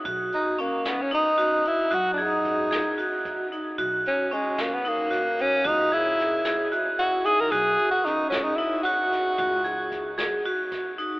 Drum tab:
HH |xxxxxxx|xxxxxxx|xxxxxxx|xxxxxxx|
SD |---o---|---o---|---o-o-|--oo---|
BD |o------|o-o--o-|o------|o------|

HH |xxxxxxx|xxxxxxx|
SD |--oo--o|--oo-o-|
BD |o------|o-o--o-|